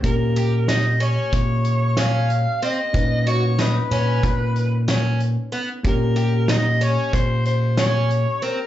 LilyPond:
<<
  \new Staff \with { instrumentName = "Soprano saxophone" } { \time 9/8 \key bes \dorian \tempo 4. = 62 bes'4 ees''8 des''4. f''4 ees''8~ | ees''8 cis''8 b'2 r4. | bes'4 ees''8 des''8 c''8 c''8 des''4 bes'8 | }
  \new Staff \with { instrumentName = "Tine electric piano" } { \time 9/8 \key bes \dorian <bes des' g'>1~ <bes des' g'>8 | <cis' dis' b'>1~ <cis' dis' b'>8 | <bes des' g'>1~ <bes des' g'>8 | }
  \new Staff \with { instrumentName = "Twelve-string acoustic guitar" } { \time 9/8 \key bes \dorian r8 g'8 ees'8 des'4 r8 des'4 c'8 | r8 fis'8 dis'8 cis'4 r8 cis'4 b8 | r8 g'8 ees'8 des'4 r8 des'4 c'8 | }
  \new Staff \with { instrumentName = "Picked electric bass" } { \clef bass \time 9/8 \key bes \dorian bes,2 bes,2 r8 | ais,4. ais,8 ais,2 r8 | bes,2 bes,2 r8 | }
  \new DrumStaff \with { instrumentName = "Drums" } \drummode { \time 9/8 <hh bd>8 hh8 <hh sn>8 hh8 <hh bd>8 hh8 <hh sn>8 hh8 hh8 | <hh bd>8 hh8 <hh sn>8 <hh sn>8 <hh bd>8 hh8 <hh sn>8 hh8 hh8 | <hh bd>8 hh8 <hh sn>8 hh8 <hh bd>8 hh8 <hh sn>8 hh8 hh8 | }
>>